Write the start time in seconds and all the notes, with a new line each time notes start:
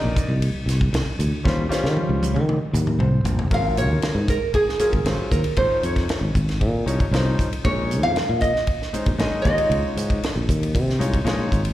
Already playing: A#3 D#4 D5 D#5
0.04 A#1
0.16 muted fretless electric bass stroke, kick, hi-hat pedal, ride
0.29 C2
0.42 ride
0.54 muted fretless electric bass stroke
0.66 C2, snare, hi-hat pedal, ride
0.81 kick
0.93 C2, snare, ride
1.06 muted fretless electric bass stroke
1.19 D2, hi-hat pedal, ride
1.44 D#2 G3 C#4 F4 C5, kick, snare
1.69 G3 C#4 F4 C5, muted fretless electric bass stroke, snare, hi-hat pedal
1.84 D#3, snare
1.97 high tom
2.09 C#2
2.23 hi-hat pedal, high tom
2.34 D#3, mid tom
2.49 mid tom
2.73 D#2, hi-hat pedal, mid tom
2.87 mid tom
2.99 C2 C5, mid tom
3.24 A#1, floor tom, hi-hat pedal
3.39 floor tom
3.51 G#1 F#3 C#4 F4 A#4 F5, kick, ride
3.77 C#5, hi-hat pedal, ride
3.89 D#2
4.02 muted fretless electric bass stroke, snare, ride
4.15 G#2
4.28 A#4, kick, hi-hat pedal, ride
4.54 G#4, kick, ride
4.69 snare
4.79 F#3 C#4 F4 G#4 A#4, muted fretless electric bass stroke, hi-hat pedal, ride
4.93 G#1, kick, ride
5.04 G#1 F#3 C#4 F4 C5, snare, ride
5.18 muted fretless electric bass stroke
5.31 D#2 A#4, kick, hi-hat pedal, ride
5.44 ride
5.56 G#1 F3 C#4 D#4 C5 C#5, kick, ride
5.71 muted fretless electric bass stroke
5.83 F2 C#5, hi-hat pedal, ride
5.96 kick, snare, ride
6.09 snare, ride
6.21 G#1
6.35 G#1, kick, hi-hat pedal, ride
6.49 snare, ride
6.61 A#2, kick, ride
6.86 C2 F3 C#4 D#4 C#5, hi-hat pedal, ride
7.00 muted fretless electric bass stroke, kick, ride
7.11 C2 F3 C#4 D#4 C5, snare, ride
7.39 kick, hi-hat pedal, ride
7.51 muted fretless electric bass stroke, ride
7.64 A#1 G#3 C#4 D#4 C#5, kick, ride
7.91 hi-hat pedal, ride
8.03 F2 F5
8.16 muted fretless electric bass stroke, snare, ride
8.29 A#2
8.41 D#5, kick, hi-hat pedal, ride
8.56 snare
8.67 kick, ride
8.82 snare
8.93 G#3 C#4 D#4 C5, muted fretless electric bass stroke, hi-hat pedal, ride
9.06 A#1, kick, ride
9.18 A#1 G#3 C#4 D#4 D#5, snare, ride
9.32 muted fretless electric bass stroke
9.42 D#2 G#3 D#4 F4 C#5 D#5, kick, hi-hat pedal, ride
9.58 ride
9.70 C#2, ride
9.84 muted fretless electric bass stroke
9.97 G#2, hi-hat pedal, ride
10.10 kick, ride
10.23 snare, ride
10.36 A#1
10.49 D#2, kick, hi-hat pedal, ride
10.63 ride
10.75 C3, kick, ride
10.90 snare
10.99 C2 G#3 D#4 F4 C#5, hi-hat pedal, ride
11.14 kick, ride
11.24 A#1 G#3 D#4 F4 C#5, snare, ride
11.52 G#1, kick, hi-hat pedal, ride
11.65 ride